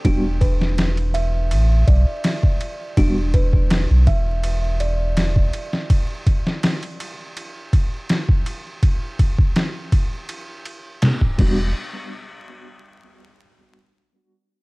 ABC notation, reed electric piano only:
X:1
M:4/4
L:1/8
Q:1/4=82
K:Em
V:1 name="Reed electric piano"
[G,B,DF] z6 z | [G,B,DF] z6 z | z8 | z6 z [G,B,DF] |
z8 |]